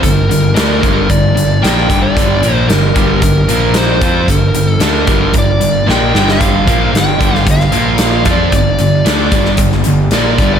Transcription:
0.02 G1 G2 D3 A#4, kick, closed hi-hat
0.29 G1 G2 D3, closed hi-hat
0.54 D2 D3 A3 D4 A#4, snare, closed hi-hat
0.82 G1 G2 D3 G3, kick, closed hi-hat
1.09 G1 G2 D3 D5, kick, closed hi-hat
1.35 G1 G2 D3, closed hi-hat
1.62 A#1 A#2 F3 A#3 G5, snare, closed hi-hat
1.87 G1 G2 D3 G3, kick, closed hi-hat
2.02 D5
2.15 G1 G2 D3 G3, kick, closed hi-hat
2.42 A#1 A#2 F3 A#3, closed hi-hat
2.54 C5
2.67 G1 G2 D3 A#4, snare, closed hi-hat
2.94 G1 G2 D3 G3, kick, closed hi-hat
3.21 G1 G2 D3 A#4, kick, closed hi-hat
3.48 A#1 A#2 F3 A#3, closed hi-hat
3.74 C5, snare, closed hi-hat
4.01 F2 F3 C4 F4, kick, closed hi-hat
4.27 G1 G2 D3 A#4, kick, closed hi-hat
4.55 G1 G2 D3, closed hi-hat
4.70 A4
4.80 D2 D3 A3 D4 A#4, snare, closed hi-hat
5.06 G1 G2 D3 G3, kick, closed hi-hat
5.34 G1 G2 D3, kick, closed hi-hat
5.38 D5
5.60 G1 G2 D3, closed hi-hat
5.87 A#1 A#2 F3 A#3, snare
5.91 G5
6.13 G1 G2 D3 G3, snare
6.28 F5, snare
6.40 G1 G2 D3 G3, kick, closed hi-hat
6.66 A#1 A#2 F3 A#3, kick, closed hi-hat
6.93 G1 G2 D3, snare, closed hi-hat
6.98 G5
7.20 G1 G2 D3 G3, kick, closed hi-hat
7.35 snare
7.46 G1 G2 D3, kick, closed hi-hat
7.51 F5
7.60 snare
7.72 A#1 A#2 F3 A#3, closed hi-hat
7.98 snare, closed hi-hat
8.25 F2 F3 C4 F4, kick, closed hi-hat
8.31 D5
8.52 G1 G2 D3, kick, closed hi-hat
8.57 D5
8.79 G1 G2 D3, closed hi-hat
9.05 D2 D3 A3 D4, snare, closed hi-hat
9.31 G1 G2 D3 G3, kick, closed hi-hat
9.45 snare
9.57 G1 G2 D3, kick, closed hi-hat
9.72 snare
9.84 G1 G2 D3, closed hi-hat
10.11 A#1 A#2 F3 A#3 D5, snare, closed hi-hat
10.38 G1 G2 D3 G3, kick, closed hi-hat
10.54 D5

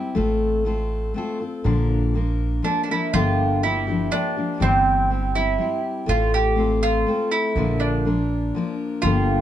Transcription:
Already playing: G3 C4 E4 G4
0.15 A1 A3 C4 F4 A4
0.65 A3 C4 F4 A4
1.14 A3 C4 F4 A4
1.40 C4 F4 A4
1.64 A#1 A#2 D3 F3 A#3 D4 A#4
2.14 F3 A#3 D4 A#4
2.62 F3 A#3 D4 A#4
2.84 D4
2.89 F3 A#3 D4 E4 A#4
3.14 G1 G2 D3 F3 A#3 D4 F4 G4
3.63 F3 A#3 D4 E4 G4
3.87 F3 A#3 D4 G4
4.12 F3 A#3 D4 G4
4.36 F3 A#3 D4 G4
4.60 G1 G2 E3 G3 C4 E4 G4
5.10 G3 C4 E4 G4
5.35 G3 C4 E4 G4
5.58 G3 C4 E4 G4
6.06 A1 A3 C4 F4 A4
6.34 G4
6.56 A3 C4 F4 A4
6.83 F4
7.07 A3 C4 F4 A4
7.32 E4
7.56 A#1 A#2 D3 F3 A#3 D4 A#4
7.80 D4
8.05 F3 A#3 D4 A#4
8.55 F3 A#3 D4 A#4
9.02 G1 G2 D3 F3 A#3 D4 F4 G4

